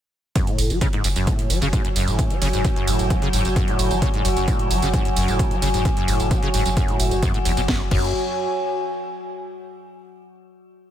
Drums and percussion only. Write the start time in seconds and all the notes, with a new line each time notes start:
0.36 kick, closed hi-hat, ride, tambourine
0.47 closed hi-hat
0.58 open hi-hat, ride, tambourine
0.70 closed hi-hat, tambourine
0.81 kick, closed hi-hat, ride, tambourine
0.93 closed hi-hat
1.04 open hi-hat, ride, tambourine
1.16 closed hi-hat, tambourine
1.27 kick, closed hi-hat, ride, tambourine
1.39 closed hi-hat
1.50 open hi-hat, ride, tambourine
1.62 closed hi-hat, tambourine
1.73 kick, closed hi-hat, ride, tambourine
1.85 closed hi-hat
1.96 open hi-hat, ride, tambourine
2.08 closed hi-hat, tambourine
2.19 kick, closed hi-hat, ride, tambourine
2.30 closed hi-hat
2.42 open hi-hat, ride, tambourine
2.53 closed hi-hat, tambourine
2.65 kick, closed hi-hat, ride, tambourine
2.76 closed hi-hat
2.87 open hi-hat, ride, tambourine
2.99 closed hi-hat, tambourine
3.10 kick, closed hi-hat, ride, tambourine
3.22 closed hi-hat
3.33 open hi-hat, ride, tambourine
3.45 closed hi-hat, tambourine
3.56 kick, closed hi-hat, ride, tambourine
3.68 closed hi-hat
3.79 open hi-hat, ride, tambourine
3.91 closed hi-hat, tambourine
4.02 kick, closed hi-hat, ride, tambourine
4.14 closed hi-hat
4.25 open hi-hat, ride, tambourine
4.37 closed hi-hat, tambourine
4.48 kick, closed hi-hat, ride, tambourine
4.59 closed hi-hat
4.71 open hi-hat, ride, tambourine
4.82 closed hi-hat, tambourine
4.93 kick, closed hi-hat, ride, tambourine
5.05 closed hi-hat
5.16 open hi-hat, ride, tambourine
5.28 closed hi-hat, tambourine
5.39 kick, closed hi-hat, ride, tambourine
5.51 closed hi-hat
5.62 open hi-hat, ride, tambourine
5.74 closed hi-hat, tambourine
5.85 kick, closed hi-hat, ride, tambourine
5.97 closed hi-hat
6.08 open hi-hat, ride, tambourine
6.20 closed hi-hat, tambourine
6.31 kick, closed hi-hat, ride, tambourine
6.43 closed hi-hat
6.54 open hi-hat, ride, tambourine
6.66 closed hi-hat, tambourine
6.77 kick, closed hi-hat, ride, tambourine
6.88 closed hi-hat
7.00 open hi-hat, ride, tambourine
7.11 closed hi-hat, tambourine
7.23 kick, closed hi-hat, ride, tambourine
7.34 closed hi-hat
7.45 open hi-hat, ride, tambourine
7.57 closed hi-hat, tambourine
7.68 kick, snare
7.91 kick, crash